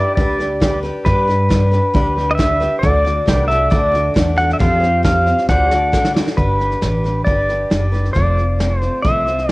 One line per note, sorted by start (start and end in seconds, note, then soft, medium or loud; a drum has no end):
0.00 0.17 D4 soft
0.00 0.18 G4 soft
0.00 2.81 G4 medium
0.00 0.17 B4 medium
0.00 2.81 B4 medium
0.00 0.14 D5 medium
0.00 2.82 D5 medium
0.15 0.88 D2 medium
0.15 0.39 G3 medium
0.15 0.40 D4 medium
0.15 0.39 G4 medium
0.15 0.79 D5 medium
0.15 kick loud
0.15 snare soft
0.20 0.37 B4 medium
0.38 0.60 D4 soft
0.38 0.62 G4 soft
0.38 0.61 B4 medium
0.38 snare soft
0.60 0.83 G3 medium
0.60 0.84 D4 medium
0.60 0.83 G4 medium
0.60 0.81 B4 medium
0.60 kick medium
0.60 snare loud
0.60 hi-hat pedal medium
0.83 1.05 D4 medium
0.83 1.06 G4 medium
0.83 1.05 B4 medium
0.83 snare soft
1.05 1.76 G2 loud
1.05 1.28 G3 medium
1.05 1.28 D4 medium
1.05 1.27 G4 medium
1.05 2.35 B4 medium
1.05 1.26 B4 medium
1.05 kick loud
1.05 snare soft
1.27 1.49 D4 soft
1.27 1.50 G4 soft
1.27 1.50 B4 medium
1.27 snare soft
1.49 1.72 G3 medium
1.49 1.72 D4 medium
1.49 1.72 G4 medium
1.49 1.70 B4 medium
1.49 kick medium
1.49 snare loud
1.49 hi-hat pedal medium
1.71 1.93 D4 medium
1.71 1.95 G4 medium
1.71 1.94 B4 medium
1.71 snare soft
1.94 2.65 D2 medium
1.94 2.16 G3 medium
1.94 2.17 D4 medium
1.94 2.16 G4 medium
1.94 2.15 B4 loud
1.94 kick loud
1.94 snare soft
2.16 2.37 D4 medium
2.16 2.39 G4 medium
2.16 2.38 B4 medium
2.16 snare soft
2.31 2.34 D#5 medium
2.35 2.60 G3 medium
2.35 2.61 D4 medium
2.35 2.78 E5 loud
2.39 2.61 G4 medium
2.39 2.59 B4 medium
2.39 kick medium
2.39 snare loud
2.39 hi-hat pedal medium
2.60 2.82 D4 soft
2.60 2.83 G4 medium
2.60 2.83 B4 medium
2.60 snare soft
2.79 3.05 D3 medium
2.79 3.50 D5 loud
2.83 3.18 D2 loud
2.83 3.05 A3 medium
2.83 3.05 D4 medium
2.83 3.05 F#4 medium
2.83 3.03 D5 medium
2.83 kick loud
2.83 snare soft
3.04 3.26 D4 soft
3.04 3.27 F#4 medium
3.04 3.27 D5 medium
3.04 snare soft
3.26 3.65 C2 medium
3.26 3.49 A3 medium
3.26 3.49 D4 medium
3.26 3.49 F#4 medium
3.26 3.49 G4 medium
3.26 3.47 D5 medium
3.26 kick medium
3.26 snare loud
3.26 hi-hat pedal medium
3.30 3.55 B4 medium
3.30 4.61 D5 medium
3.48 3.70 D4 soft
3.48 4.60 F#4 medium
3.48 3.70 F#4 soft
3.48 3.71 D5 medium
3.48 3.72 E5 loud
3.48 snare soft
3.55 4.60 A4 medium
3.70 4.09 D2 medium
3.70 3.93 D3 medium
3.70 3.93 A3 medium
3.70 3.94 D4 medium
3.70 3.92 F#4 medium
3.70 4.13 D5 medium
3.70 3.90 D5 medium
3.70 kick loud
3.70 snare soft
3.92 4.14 D4 medium
3.92 4.15 F#4 medium
3.92 4.15 D5 medium
3.92 snare soft
4.14 4.54 E2 medium
4.14 4.37 A3 medium
4.14 4.38 D4 medium
4.14 4.37 F#4 medium
4.14 4.35 D5 medium
4.14 kick medium
4.14 snare loud
4.14 hi-hat pedal medium
4.36 4.60 D4 soft
4.36 4.60 F#4 soft
4.36 4.59 D5 medium
4.36 4.52 F#5 loud
4.36 snare soft
4.50 4.59 E5 medium
4.50 snare soft
4.59 5.31 F2 loud
4.59 4.82 F3 medium
4.59 4.82 G3 medium
4.59 4.82 C4 medium
4.59 5.49 F4 medium
4.59 4.80 G4 medium
4.59 4.88 A4 medium
4.59 4.79 C5 medium
4.59 5.04 F5 loud
4.59 kick loud
4.59 snare soft
4.63 4.88 D5 medium
4.80 5.03 C4 soft
4.80 5.04 G4 soft
4.80 5.03 C5 medium
4.80 snare soft
4.88 5.50 G4 medium
4.88 5.50 C5 medium
5.03 5.26 G3 medium
5.03 5.27 C4 medium
5.03 5.26 G4 medium
5.03 5.25 C5 medium
5.03 5.49 F5 loud
5.03 kick medium
5.03 snare loud
5.03 hi-hat pedal medium
5.26 5.49 C4 soft
5.26 5.49 G4 soft
5.26 5.49 C5 soft
5.26 snare soft
5.38 snare soft
5.49 6.19 D2 medium
5.49 5.71 D3 medium
5.49 5.72 A3 medium
5.49 5.72 D4 medium
5.49 5.70 F4 medium
5.49 5.71 F#4 medium
5.49 5.76 G4 medium
5.49 5.77 C5 medium
5.49 5.70 D5 medium
5.49 6.12 F#5 medium
5.49 kick loud
5.49 snare medium
5.70 5.92 D4 soft
5.70 6.38 F#4 medium
5.70 5.93 F#4 soft
5.70 5.93 D5 medium
5.70 snare medium
5.76 6.38 A4 medium
5.76 6.38 D5 medium
5.92 6.15 A3 medium
5.92 6.16 D4 medium
5.92 6.15 F#4 medium
5.92 6.13 D5 medium
5.92 kick medium
5.92 snare medium
5.92 hi-hat pedal medium
6.05 snare medium
6.14 6.36 D4 soft
6.14 6.38 F#4 medium
6.14 6.37 D5 medium
6.14 snare loud
6.28 snare medium
6.37 6.73 G1 medium
6.37 6.59 G3 medium
6.37 6.60 D4 medium
6.37 6.60 G4 medium
6.37 7.24 B4 medium
6.37 6.58 B4 medium
6.37 kick medium
6.59 6.82 D4 soft
6.59 6.83 G4 soft
6.59 6.82 B4 soft
6.59 snare soft
6.71 snare soft
6.81 7.20 A1 medium
6.81 7.04 G3 medium
6.81 7.05 D4 soft
6.81 7.05 G4 medium
6.81 7.03 B4 medium
6.81 snare loud
6.81 hi-hat pedal medium
7.04 7.26 D4 soft
7.04 7.26 G4 soft
7.04 7.26 B4 medium
7.04 snare soft
7.24 7.65 G1 medium
7.24 7.48 G3 medium
7.24 7.49 D4 medium
7.24 7.49 G4 medium
7.24 7.48 B4 medium
7.24 8.12 D5 medium
7.24 kick loud
7.24 snare soft
7.49 7.70 D4 soft
7.49 7.71 G4 soft
7.49 7.71 B4 soft
7.49 snare soft
7.70 8.09 F#1 medium
7.70 7.93 G3 medium
7.70 7.93 D4 medium
7.70 7.92 G4 medium
7.70 7.91 B4 medium
7.70 snare loud
7.70 hi-hat pedal medium
7.92 8.15 D4 soft
7.92 8.16 G4 soft
7.92 8.15 B4 medium
7.92 snare soft
8.05 snare soft
8.13 8.86 F1 medium
8.13 8.37 F3 medium
8.13 8.37 A3 medium
8.13 8.38 C4 medium
8.13 8.38 F4 medium
8.13 8.35 C5 medium
8.13 8.79 D5 medium
8.13 kick medium
8.13 snare soft
8.37 8.59 C4 soft
8.37 8.60 F4 soft
8.37 8.59 C5 soft
8.37 snare soft
8.59 8.82 A3 soft
8.59 8.82 C4 medium
8.59 8.82 F4 medium
8.59 8.80 C5 medium
8.59 snare loud
8.59 hi-hat pedal medium
8.79 9.06 C5 medium
8.79 9.04 C5 medium
8.79 snare soft
8.83 9.04 C4 soft
8.83 9.05 F4 soft
9.02 9.52 C2 medium
9.02 9.27 F3 medium
9.02 9.27 A3 medium
9.02 9.27 C4 medium
9.02 9.27 F4 medium
9.02 9.26 C5 medium
9.02 9.50 E5 medium
9.02 kick loud
9.02 snare soft
9.27 9.49 C4 soft
9.27 9.50 F4 soft
9.27 9.49 C5 soft
9.27 snare soft
9.38 snare soft